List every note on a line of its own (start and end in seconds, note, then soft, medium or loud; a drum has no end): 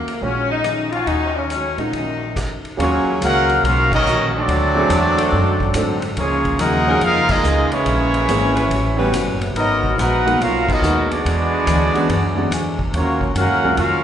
0.00 0.19 A#3 medium
0.00 0.10 C#4 medium
0.00 0.11 F#4 medium
0.07 muted upright bass stroke soft
0.07 ride medium
0.21 1.03 A#1 medium
0.21 0.52 D#3 soft
0.21 0.87 G#3 medium
0.21 0.53 G#3 soft
0.21 0.87 C#4 medium
0.21 0.51 C#4 medium
0.21 0.53 C#4 soft
0.21 0.88 F4 soft
0.21 0.88 F#4 medium
0.21 kick soft
0.26 0.54 F#4 medium
0.50 0.90 D#4 loud
0.64 0.94 D#3 soft
0.64 0.95 G#3 medium
0.64 0.95 C#4 medium
0.64 0.95 F#4 medium
0.64 cross-stick medium
0.64 hi-hat pedal medium
0.64 ride medium
0.91 1.07 F4 loud
0.91 1.48 F#4 medium
0.91 1.48 C#5 medium
0.91 1.48 F5 medium
0.91 1.48 G#5 medium
0.91 ride soft
1.07 1.74 D#2 medium
1.07 1.38 D#3 soft
1.07 1.38 G#3 soft
1.07 1.39 C#4 soft
1.07 1.35 D#4 loud
1.07 kick soft
1.07 ride medium
1.11 1.39 F#4 soft
1.36 1.50 C#4 medium
1.50 1.80 D#3 medium
1.50 1.81 G#3 medium
1.50 1.77 C#4 medium
1.50 1.81 C#4 medium
1.50 hi-hat pedal soft
1.50 ride medium
1.54 1.82 F#4 medium
1.75 2.58 F#2 medium
1.75 2.58 A#2 medium
1.75 1.92 A#2 medium
1.75 2.58 D#3 medium
1.75 1.91 G#3 medium
1.75 1.92 C#4 soft
1.75 2.60 D#4 medium
1.75 1.92 F4 soft
1.75 ride soft
1.79 1.92 F#4 medium
1.93 2.59 A#1 medium
1.93 2.23 D#3 soft
1.93 2.24 G#3 soft
1.93 2.24 C#4 soft
1.93 kick soft
1.93 ride medium
1.98 2.25 F#4 soft
2.36 kick medium
2.36 cross-stick medium
2.36 hi-hat pedal medium
2.36 crash medium
2.36 ride medium
2.64 muted upright bass stroke soft
2.64 ride soft
2.77 3.04 D#2 medium
2.77 3.08 D#3 soft
2.77 3.43 F#3 medium
2.77 3.18 F#3 medium
2.77 3.98 F#3 loud
2.77 3.09 G#3 medium
2.77 3.43 A#3 medium
2.77 3.18 A#3 medium
2.77 3.43 C#4 medium
2.77 3.18 C#4 medium
2.77 3.98 C#4 loud
2.77 3.09 C#4 medium
2.77 3.98 D#4 medium
2.77 3.18 F4 medium
2.77 3.18 F#4 medium
2.77 3.43 G#4 medium
2.77 3.98 G#4 loud
2.77 3.18 C#5 loud
2.77 3.43 F5 medium
2.77 kick soft
2.77 ride medium
2.83 3.10 F#4 medium
3.05 muted upright bass stroke soft
3.21 3.62 C#2 loud
3.21 3.51 D#3 medium
3.21 3.51 G#3 medium
3.21 3.61 A#3 loud
3.21 3.61 C#4 loud
3.21 3.62 C#4 loud
3.21 3.52 C#4 medium
3.21 3.61 F#4 loud
3.21 3.52 F#4 medium
3.21 3.62 A#4 loud
3.21 3.62 F5 loud
3.21 3.61 F#5 loud
3.21 kick soft
3.21 hi-hat pedal medium
3.21 ride medium
3.49 ride medium
3.63 4.03 B1 medium
3.63 3.93 D#3 soft
3.63 3.94 G#3 medium
3.63 3.92 A#3 loud
3.63 3.92 C#4 medium
3.63 3.95 C#4 medium
3.63 3.92 F4 medium
3.63 3.92 F#4 loud
3.63 3.92 A#4 medium
3.63 3.92 F5 loud
3.63 kick soft
3.63 ride medium
3.68 3.95 F#4 medium
3.92 4.31 F#3 medium
3.92 4.31 A#3 medium
3.92 4.32 C#4 loud
3.92 4.31 D#4 medium
3.92 4.32 F#4 loud
3.92 4.32 A#4 loud
3.92 4.32 D#5 loud
3.92 kick medium
3.92 crash medium
4.04 4.46 A#1 loud
4.04 4.35 D#3 medium
4.04 hi-hat pedal medium
4.08 4.36 G#3 medium
4.08 4.36 C#4 medium
4.08 4.37 F#4 medium
4.35 6.04 F#3 loud
4.35 6.04 A3 loud
4.35 6.04 C4 medium
4.35 6.04 D4 loud
4.35 6.04 F#4 medium
4.35 6.05 A4 medium
4.35 6.04 D5 loud
4.48 4.89 D2 medium
4.48 4.77 D3 soft
4.48 4.78 G#3 soft
4.48 4.78 C4 soft
4.48 4.79 F#4 medium
4.48 kick soft
4.48 ride medium
4.75 4.89 F#3 medium
4.75 4.89 A3 medium
4.75 4.89 C4 medium
4.75 4.89 D4 medium
4.75 4.90 G#4 medium
4.89 5.31 E2 loud
4.89 5.19 D3 medium
4.89 5.19 G#3 medium
4.89 5.20 C4 medium
4.89 5.20 F#4 medium
4.89 kick soft
4.89 hi-hat pedal medium
4.89 ride medium
5.17 5.72 F#3 loud
5.17 5.72 C4 loud
5.17 5.72 D4 loud
5.17 5.72 A4 loud
5.17 ride medium
5.32 5.74 F#2 loud
5.32 5.62 D3 medium
5.32 5.62 G#3 medium
5.32 5.63 C4 medium
5.32 5.63 F#4 medium
5.32 kick soft
5.60 kick medium
5.74 6.16 G#2 medium
5.74 6.04 D3 medium
5.74 6.00 F#3 medium
5.74 6.05 G#3 medium
5.74 6.00 A3 medium
5.74 6.00 C4 medium
5.74 6.05 C4 medium
5.74 6.01 D4 medium
5.74 6.05 F#4 medium
5.74 6.01 A4 medium
5.74 kick soft
5.74 hi-hat pedal medium
5.74 ride loud
6.02 ride medium
6.16 6.58 C#2 medium
6.16 6.46 C#3 medium
6.16 6.47 F3 medium
6.16 6.57 G#3 medium
6.16 6.56 A#3 medium
6.16 6.57 A#3 medium
6.16 6.47 A#3 medium
6.16 6.56 C#4 medium
6.16 6.47 D#4 medium
6.16 6.57 F4 medium
6.16 6.57 G#4 medium
6.16 6.57 C#5 loud
6.16 kick soft
6.16 ride medium
6.45 kick medium
6.45 ride soft
6.58 7.00 D#2 loud
6.58 6.88 C#3 medium
6.58 6.88 F3 medium
6.58 7.00 G#3 loud
6.58 7.00 A#3 loud
6.58 6.89 A#3 medium
6.58 6.89 D#4 medium
6.58 7.01 D#4 loud
6.58 7.02 F#4 medium
6.58 7.02 G#4 medium
6.58 7.03 A#4 loud
6.58 7.03 F#5 loud
6.58 kick soft
6.58 hi-hat pedal medium
6.58 ride medium
6.87 7.00 F3 medium
6.87 7.42 F3 loud
6.87 7.00 A#3 medium
6.87 7.01 C#4 medium
6.87 7.42 C#4 loud
6.87 7.01 D#4 medium
6.87 7.42 D#4 loud
6.87 7.01 G#4 medium
6.87 7.42 A#4 loud
7.01 7.43 F2 loud
7.01 7.31 C#3 medium
7.01 7.32 F3 medium
7.01 7.29 G#3 loud
7.01 7.30 A#3 medium
7.01 7.32 A#3 medium
7.01 7.30 D#4 loud
7.01 7.32 D#4 medium
7.01 7.30 F4 medium
7.01 7.29 G#4 medium
7.01 7.31 A#4 medium
7.01 7.31 F5 loud
7.01 kick soft
7.01 ride medium
7.29 7.73 G#3 medium
7.29 7.70 A#3 loud
7.29 7.73 A#3 medium
7.29 7.73 D#4 medium
7.29 7.72 F4 loud
7.29 7.70 G#4 loud
7.29 7.72 D#5 loud
7.29 kick loud
7.29 crash medium
7.43 7.70 C#2 loud
7.43 7.73 C#3 medium
7.43 7.73 F3 medium
7.43 7.74 A#3 medium
7.43 7.74 D#4 medium
7.43 hi-hat pedal medium
7.71 9.42 E3 medium
7.71 8.72 G#3 loud
7.71 8.71 A#3 medium
7.71 9.42 C#4 medium
7.71 9.41 E4 loud
7.71 8.71 G#4 medium
7.71 9.41 C#5 loud
7.71 muted upright bass stroke soft
7.71 ride medium
7.85 8.27 A#1 medium
7.85 8.15 A#2 soft
7.85 8.16 G#3 medium
7.85 8.16 C#4 medium
7.85 8.17 E4 soft
7.85 kick soft
7.85 ride medium
8.14 ride soft
8.28 8.69 G#1 loud
8.28 8.58 A#2 medium
8.28 8.54 E3 medium
8.28 8.58 G#3 medium
8.28 8.54 A#3 medium
8.28 8.54 C4 medium
8.28 8.54 C#4 medium
8.28 8.59 C#4 medium
8.28 8.59 E4 medium
8.28 8.55 G#4 medium
8.28 kick soft
8.28 hi-hat pedal medium
8.28 ride medium
8.56 8.66 G3 loud
8.56 8.66 C#4 medium
8.56 8.67 F#4 medium
8.56 8.66 B4 loud
8.56 ride medium
8.70 9.12 A1 medium
8.70 9.00 A2 medium
8.70 9.01 G3 medium
8.70 9.01 C#4 medium
8.70 9.02 F#4 medium
8.70 kick soft
8.70 ride medium
8.97 9.11 E3 medium
8.97 9.11 G3 medium
8.97 9.53 G3 loud
8.97 9.11 B3 medium
8.97 9.12 C#4 medium
8.97 9.53 C#4 loud
8.97 9.53 F#4 loud
8.97 9.12 G4 medium
8.97 9.53 B4 loud
9.13 9.54 F#1 loud
9.13 9.42 A2 medium
9.13 9.43 G3 medium
9.13 9.43 C#4 medium
9.13 9.44 F#4 medium
9.13 kick soft
9.13 hi-hat pedal medium
9.13 ride loud
9.41 ride medium
9.55 9.96 G#1 medium
9.55 9.95 F#3 medium
9.55 9.85 G#3 soft
9.55 9.95 B3 medium
9.55 9.85 B3 medium
9.55 9.96 B3 medium
9.55 9.95 D#4 medium
9.55 9.96 F#4 medium
9.55 9.86 F#4 medium
9.55 9.95 A#4 medium
9.55 9.96 D#5 loud
9.55 kick soft
9.55 ride medium
9.60 9.87 A#4 medium
9.84 kick medium
9.97 10.39 A#1 medium
9.97 10.27 G#3 medium
9.97 10.17 G#3 medium
9.97 10.39 B3 medium
9.97 10.27 B3 medium
9.97 10.17 B3 medium
9.97 10.40 D#4 medium
9.97 10.41 D#4 loud
9.97 10.40 F#4 medium
9.97 10.17 F#4 medium
9.97 10.28 F#4 medium
9.97 10.18 A#4 loud
9.97 10.28 A#4 medium
9.97 10.40 A#4 loud
9.97 10.41 B4 medium
9.97 kick soft
9.97 hi-hat pedal medium
9.97 ride medium
10.01 10.41 F#5 loud
10.25 10.38 D#3 medium
10.25 10.38 G#3 medium
10.25 10.39 A#3 medium
10.25 10.39 B3 medium
10.25 10.39 F#4 medium
10.25 ride medium
10.41 10.81 B1 loud
10.41 10.69 G#3 medium
10.41 10.70 B3 medium
10.41 10.69 C#4 loud
10.41 10.68 F4 medium
10.41 10.69 F#4 medium
10.41 10.70 F#4 medium
10.41 10.69 A#4 medium
10.41 10.71 A#4 medium
10.41 10.69 F5 loud
10.41 kick soft
10.41 ride medium
10.68 11.10 F#3 medium
10.68 11.07 B3 medium
10.68 11.10 B3 medium
10.68 11.10 D#4 medium
10.68 11.10 F#4 medium
10.68 11.11 A#4 medium
10.68 11.12 D#5 loud
10.68 kick loud
10.68 crash medium
10.82 11.23 D#2 loud
10.82 11.07 D#3 medium
10.82 11.11 G#3 medium
10.82 11.07 G#3 medium
10.82 11.07 A#3 medium
10.82 11.12 B3 medium
10.82 11.08 B3 medium
10.82 11.08 F#4 medium
10.82 11.12 F#4 medium
10.82 11.13 A#4 medium
10.82 hi-hat pedal medium
11.08 12.74 G#3 loud
11.08 12.74 B3 loud
11.08 12.75 B3 medium
11.08 12.73 D4 loud
11.08 12.75 F#4 medium
11.08 12.75 G#4 medium
11.08 12.75 D5 loud
11.08 ride medium
11.25 11.66 E2 medium
11.25 11.54 E3 soft
11.25 11.54 D4 medium
11.25 11.55 G#4 medium
11.25 11.55 C#5 medium
11.25 kick soft
11.25 ride medium
11.66 11.92 D2 medium
11.66 11.96 E3 medium
11.66 11.85 F#3 medium
11.66 11.85 C#4 medium
11.66 11.86 D4 medium
11.66 11.96 D4 medium
11.66 11.85 G#4 loud
11.66 11.97 G#4 medium
11.66 11.97 C#5 medium
11.66 kick soft
11.66 hi-hat pedal medium
11.66 ride medium
11.94 12.07 D3 medium
11.94 12.08 G#3 medium
11.94 12.08 B3 medium
11.94 12.08 C#4 medium
11.94 12.08 F#4 medium
11.94 muted upright bass stroke soft
11.94 ride medium
12.09 12.50 F#2 loud
12.09 12.38 E3 medium
12.09 12.39 D4 medium
12.09 12.39 G#4 medium
12.09 12.40 C#5 medium
12.09 kick soft
12.09 ride medium
12.36 12.49 D3 medium
12.36 12.49 G#3 medium
12.36 12.49 B3 medium
12.36 12.50 C#4 medium
12.36 12.50 F#4 medium
12.51 12.92 E2 loud
12.51 12.80 E3 medium
12.51 12.80 D4 medium
12.51 12.81 G#4 medium
12.51 12.81 C#5 medium
12.51 kick soft
12.51 hi-hat pedal medium
12.51 ride loud
12.79 kick medium
12.92 13.34 D#2 medium
12.92 13.22 D#3 medium
12.92 13.32 F#3 medium
12.92 13.23 G#3 medium
12.92 13.32 A#3 medium
12.92 13.33 A#3 medium
12.92 13.32 C#4 medium
12.92 13.33 F4 medium
12.92 13.33 F#4 medium
12.92 13.32 C#5 loud
12.92 kick soft
12.92 ride medium
12.96 13.24 C#4 medium
12.96 13.24 F#4 soft
13.21 kick medium
13.35 13.50 F#2 loud
13.35 13.64 D#3 medium
13.35 13.64 G#3 medium
13.35 13.74 A#3 medium
13.35 13.74 C#4 medium
13.35 13.65 C#4 medium
13.35 13.76 C#4 medium
13.35 13.74 F#4 medium
13.35 13.66 F#4 medium
13.35 13.75 A#4 medium
13.35 13.75 F5 medium
13.35 13.76 F#5 loud
13.35 kick soft
13.35 hi-hat pedal medium
13.35 ride medium
13.50 13.63 D#2 medium
13.63 13.77 C#2 medium
13.63 13.76 F#3 medium
13.63 13.77 G#3 medium
13.63 13.77 A#3 medium
13.63 13.77 C#4 medium
13.63 13.77 F4 medium
13.77 14.04 F2 loud
13.77 14.04 D#3 medium
13.77 14.04 G#3 medium
13.77 14.04 A#3 medium
13.77 14.04 C#4 medium
13.77 14.04 F4 medium
13.77 14.04 F#4 medium
13.77 14.04 A#4 medium
13.77 14.04 F5 loud
13.77 kick soft
13.77 ride medium
13.82 14.04 F#4 medium